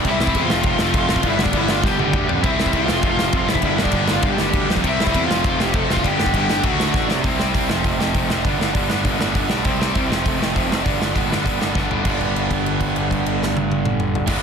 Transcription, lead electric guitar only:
X:1
M:4/4
L:1/16
Q:1/4=200
K:Gmix
V:1 name="Lead electric guitar"
[Ee]2 [Ee]3 [Ff]3 [Ff]4 [Ff]2 [Ff]2 | [Ee]2 [Dd]2 [Ee]2 [Ff]2 [Gg]6 z2 | [Ee]2 [Ee]3 [Ff]3 [Ff]4 [Ff]2 [Ee]2- | [Ee]2 [Dd]4 [Ff]2 [Gg]6 z2 |
[Ee]2 [Ee]3 [Ff]3 [Ff]2 [Gg]2 [Aa]2 [Ff]2 | [Gg]4 [Gg]4 [^F^f]6 z2 | z16 | z16 |
z16 | z16 | z16 | z16 |]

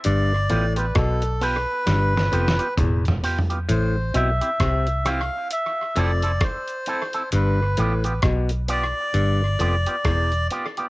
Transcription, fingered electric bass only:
X:1
M:4/4
L:1/16
Q:"Swing 16ths" 1/4=66
K:Gmix
V:1 name="Fingered electric bass" clef=bass
G,,,2 A,,,2 B,,,3 z G,,,2 F,,, z E,,,2 z2 | A,,,2 B,,, z C,,3 z3 F,,,2 z4 | G,,,2 A,,,2 B,,,3 z G,,,2 F,,, z E,,,2 z2 |]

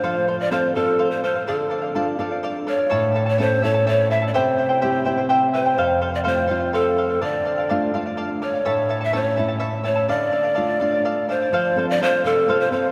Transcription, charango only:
X:1
M:6/8
L:1/16
Q:3/8=84
K:Dm
V:1 name="Charango"
[Acf]2 [Acf] [cf] [Acf]2 [Acf] [cf] [Acf]2 [Acf] [cf] | [Adf]2 [Adf] [df] [Adf]2 [Adf] [df] [Adf]2 [Adf] [df] | [EA^cea]2 [EAea] [EAa] [EAcea]2 [EAea] [EAa] [EAcea]2 [EAea] [EAa] | [EGceg]2 [Eceg] [Ecg] [EGceg]2 [Eceg] [Ecg] [EGceg]2 [Eceg] [Ecg] |
[Acf]2 [Acf] [cf] [Acf]2 [Acf] [cf] [Acf]2 [Acf] [cf] | [Adf]2 [Adf] [df] [Adf]2 [Adf] [df] [Adf]2 [Adf] [df] | [EA^cea]2 [EAea] [EAa] [EAcea]2 [EAea] [EAa] [EAcea]2 [EAea] [EAa] | [Adf]2 [Adf] [df] [Adf]2 [Adf] [df] [Adf]2 [Adf] [df] |
[Acf]2 [Acf] [cf] [Acf]2 [Acf] [cf] [Acf]2 [Acf] [cf] |]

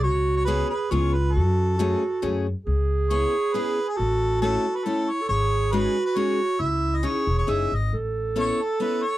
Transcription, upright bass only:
X:1
M:3/4
L:1/8
Q:"Swing" 1/4=137
K:F#m
V:1 name="Upright bass" clef=bass
C,,4 C,,2 | F,,4 F,,2 | [K:C#m] C,,4 z2 | A,,,4 z2 |
G,,,4 z2 | C,,3 E,,, F,,, G,,, | A,,,4 z2 |]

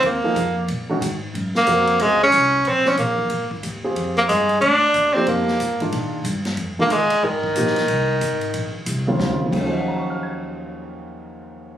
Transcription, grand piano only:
X:1
M:4/4
L:1/8
Q:"Swing" 1/4=183
K:Ebdor
V:1 name="Grand piano"
z [F,B,EA] z3 [E,A,DG] z2 | z2 [CFGB]3 z3 | z6 z [CF=GA]- | [CF=GA]2 z4 z [F,B,EG]- |
[F,B,E=G]2 z [E,A,=DF]3 z2 | z [E,A,=DF] z4 [F,B,E=G] z | z6 z [D,G,CF] | [E,,E,G,A,DF] z [E,,E,F,G,A,DAcegbd'f'a']6- |
[E,,E,F,G,A,DAcegbd'f'a']8 |]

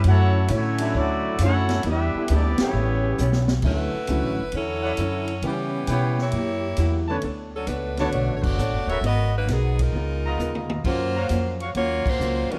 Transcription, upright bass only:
X:1
M:4/4
L:1/8
Q:"Swing" 1/4=133
K:D
V:1 name="Upright bass" clef=bass
F,,2 A,,2 D,,2 F,,2 | E,, z D,, z A,,,2 B,,,2 | D,, z (3C,, A,,, F,,, E,,2 F,,2 | C,2 B,,2 F,,2 E,,2 |
D,,2 C,,2 (3B,,, A,,, F,,, (3A,,, F,,, D,,, | ^G,,,2 B,,,2 C,,2 ^D,,2 | F,,2 ^E,,2 _E,, z C,, z |]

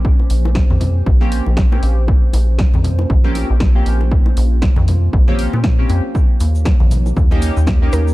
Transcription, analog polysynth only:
X:1
M:4/4
L:1/16
Q:"Swing 16ths" 1/4=118
K:Bbdor
V:1 name="Analog polysynth"
z8 z [B,CDG]2 z2 [B,CDG]2 z | z8 z [B,CDG]2 z2 [B,CDG]2 z | z8 z [B,CDG]2 z2 [B,CDG]2 z | z8 z [B,DEG]2 z2 [B,DEG]2 z |]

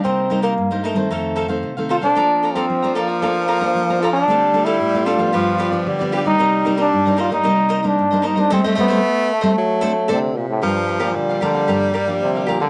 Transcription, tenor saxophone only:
X:1
M:4/4
L:1/8
Q:1/4=113
K:Gm
V:1 name="Tenor saxophone" clef=bass
z8 | F,8 | G,4 F,2 G,2 | G,6- G, z |
A,4 ^F,2 D, C, | F,2 G,6 |]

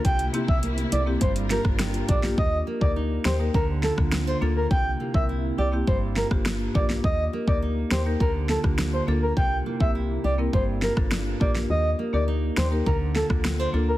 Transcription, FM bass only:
X:1
M:4/4
L:1/16
Q:1/4=103
K:Eblyd
V:1 name="FM bass" clef=bass
C,,2 z C,,3 C,,2 G,,,3 G,,,3 B,,,2 | E,,2 z D,,3 E,,2 D,,3 D,,3 D,,2 | C,,2 z C,,3 C,,2 G,,,3 G,,,3 B,,,2 | E,,2 z D,,3 E,,2 D,,3 D,,3 D,,2 |
C,,2 z C,,3 C,,2 G,,,3 G,,,3 B,,,2 | E,,2 z D,,3 E,,2 D,,3 D,,3 D,,2 |]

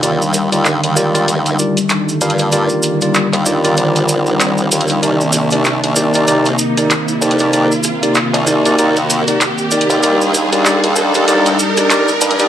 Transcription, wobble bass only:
X:1
M:4/4
L:1/16
Q:"Swing 16ths" 1/4=96
K:Eb
V:1 name="Wobble bass" clef=bass
E,,3 E,,2 E,,3 E,,2 z4 G,,2- | G,, z4 E,,3 B,,,6 E,,2 | C,,3 C,,2 C,,3 C,,2 z4 F,,2- | F,, z4 C,,3 E,,3 z4 E,, |
E,,3 E,,2 E,,3 E,,2 z4 G,,2 |]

